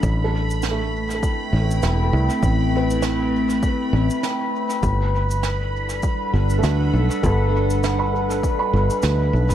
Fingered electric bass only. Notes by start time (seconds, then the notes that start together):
0.03 A1
1.53 A1
1.83 E1
2.13 C2
2.43 A1
3.93 A1
4.83 G1
6.33 G1
6.63 D2
6.93 B1
7.24 G1
8.73 G1
9.03 D2
9.33 B1
9.50 G1